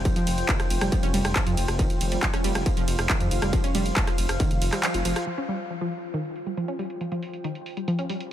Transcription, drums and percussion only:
0.05 kick loud
0.05 closed hi-hat medium
0.05 ride medium
0.16 closed hi-hat medium
0.27 open hi-hat loud
0.27 ride medium
0.38 closed hi-hat medium
0.49 kick loud
0.49 clap loud
0.49 closed hi-hat medium
0.49 ride medium
0.60 cross-stick medium
0.60 closed hi-hat medium
0.70 open hi-hat medium
0.70 ride medium
0.81 cross-stick loud
0.81 closed hi-hat medium
0.92 kick loud
0.92 closed hi-hat medium
0.92 ride medium
1.03 closed hi-hat medium
1.14 open hi-hat loud
1.14 ride medium
1.25 cross-stick loud
1.25 closed hi-hat medium
1.36 kick loud
1.36 clap loud
1.36 closed hi-hat medium
1.36 ride medium
1.47 closed hi-hat medium
1.57 open hi-hat medium
1.57 ride medium
1.68 cross-stick medium
1.68 closed hi-hat soft
1.79 kick loud
1.79 closed hi-hat medium
1.79 ride medium
1.90 closed hi-hat medium
2.01 open hi-hat loud
2.01 ride medium
2.12 closed hi-hat medium
2.23 kick loud
2.23 clap loud
2.23 closed hi-hat medium
2.23 ride medium
2.34 cross-stick medium
2.34 closed hi-hat medium
2.44 open hi-hat medium
2.44 ride medium
2.55 cross-stick loud
2.55 closed hi-hat medium
2.66 kick loud
2.66 closed hi-hat medium
2.66 ride medium
2.77 closed hi-hat medium
2.88 open hi-hat loud
2.88 ride medium
2.99 cross-stick loud
2.99 closed hi-hat medium
3.10 kick loud
3.10 clap loud
3.10 closed hi-hat medium
3.10 ride medium
3.20 closed hi-hat medium
3.31 open hi-hat medium
3.31 ride medium
3.42 cross-stick loud
3.42 closed hi-hat medium
3.53 kick loud
3.53 closed hi-hat medium
3.53 ride medium
3.64 closed hi-hat medium
3.75 open hi-hat loud
3.75 ride medium
3.86 closed hi-hat medium
3.96 kick loud
3.96 clap loud
3.96 closed hi-hat medium
3.96 ride medium
4.07 cross-stick medium
4.07 closed hi-hat medium
4.18 open hi-hat medium
4.18 ride medium
4.29 cross-stick loud
4.29 closed hi-hat medium
4.40 kick loud
4.40 closed hi-hat medium
4.40 ride medium
4.51 closed hi-hat medium
4.62 open hi-hat loud
4.62 ride medium
4.73 cross-stick medium
4.73 clap soft
4.73 closed hi-hat medium
4.83 clap loud
4.83 closed hi-hat medium
4.83 ride medium
4.94 closed hi-hat medium
5.05 open hi-hat loud
5.05 ride medium
5.16 cross-stick medium
5.16 closed hi-hat medium
5.49 open hi-hat loud
5.70 closed hi-hat medium
5.81 closed hi-hat medium
5.92 open hi-hat medium
6.03 closed hi-hat medium
6.14 closed hi-hat medium
6.25 closed hi-hat medium
6.36 open hi-hat loud
6.47 closed hi-hat medium
6.57 closed hi-hat medium
6.68 closed hi-hat medium
6.79 open hi-hat medium
6.90 closed hi-hat medium
7.01 closed hi-hat medium
7.12 closed hi-hat medium
7.23 open hi-hat loud
7.33 closed hi-hat medium
7.44 closed hi-hat medium
7.55 closed hi-hat medium
7.66 open hi-hat medium
7.77 closed hi-hat medium
7.88 closed hi-hat medium
7.99 closed hi-hat medium
8.10 open hi-hat loud
8.20 closed hi-hat medium

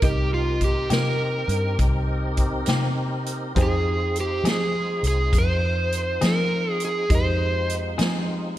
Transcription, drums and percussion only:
0.02 kick medium
0.02 closed hi-hat medium
0.61 kick medium
0.61 closed hi-hat soft
0.90 snare medium
0.90 closed hi-hat medium
1.49 closed hi-hat soft
1.79 kick medium
1.79 closed hi-hat medium
2.37 kick medium
2.37 closed hi-hat soft
2.66 snare medium
2.66 closed hi-hat medium
3.26 closed hi-hat medium
3.56 kick medium
3.56 closed hi-hat medium
4.16 closed hi-hat medium
4.45 snare medium
4.45 closed hi-hat medium
5.04 closed hi-hat medium
5.33 kick medium
5.33 closed hi-hat medium
5.92 closed hi-hat medium
6.21 snare medium
6.21 closed hi-hat medium
6.80 closed hi-hat soft
7.10 kick loud
7.10 closed hi-hat medium
7.70 closed hi-hat medium
7.99 snare loud
7.99 closed hi-hat medium

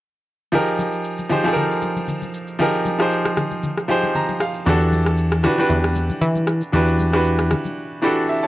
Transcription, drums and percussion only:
0.53 low conga medium
0.53 shaker medium
0.67 shaker soft
0.79 high conga medium
0.79 shaker medium
0.93 shaker medium
1.04 shaker medium
1.18 high conga soft
1.18 shaker soft
1.30 low conga medium
1.30 shaker medium
1.44 high conga medium
1.44 shaker soft
1.56 low conga medium
1.56 shaker medium
1.71 shaker soft
1.82 high conga medium
1.82 shaker medium
1.96 high conga medium
1.96 shaker soft
2.08 low conga medium
2.08 shaker medium
2.22 high conga medium
2.22 shaker soft
2.34 shaker medium
2.48 shaker soft
2.60 low conga medium
2.60 shaker medium
2.74 shaker soft
2.85 high conga medium
2.85 shaker medium
3.00 cross-stick medium
3.00 shaker soft
3.11 shaker medium
3.25 cross-stick loud
3.25 high conga soft
3.25 shaker medium
3.37 cross-stick medium
3.37 low conga medium
3.37 shaker medium
3.51 high conga medium
3.51 shaker soft
3.63 low conga medium
3.63 shaker medium
3.77 cross-stick medium
3.77 shaker soft
3.89 high conga medium
3.89 shaker medium
4.03 high conga medium
4.03 shaker medium
4.15 low conga medium
4.15 shaker medium
4.29 high conga medium
4.29 shaker soft
4.40 cross-stick medium
4.40 shaker medium
4.54 shaker soft
4.66 low conga medium
4.66 shaker medium
4.81 shaker soft
4.92 high conga medium
4.92 shaker medium
5.06 cross-stick medium
5.06 shaker medium
5.18 shaker medium
5.32 cross-stick medium
5.32 high conga soft
5.32 shaker medium
5.44 cross-stick medium
5.44 low conga medium
5.44 shaker medium
5.58 high conga medium
5.58 shaker soft
5.70 low conga medium
5.70 shaker medium
5.84 cross-stick medium
5.84 shaker soft
5.95 high conga medium
5.95 shaker medium
6.10 high conga medium
6.10 shaker medium
6.21 low conga medium
6.21 shaker medium
6.35 high conga medium
6.35 shaker soft
6.47 cross-stick loud
6.47 shaker medium
6.61 shaker soft
6.73 low conga medium
6.73 shaker medium
6.88 shaker medium
6.99 high conga medium
6.99 shaker medium
7.13 cross-stick medium
7.13 shaker medium
7.25 shaker medium
7.39 cross-stick medium
7.39 high conga soft
7.39 shaker medium
7.51 cross-stick loud
7.51 low conga medium
7.51 shaker medium
7.64 high conga medium
7.64 shaker soft

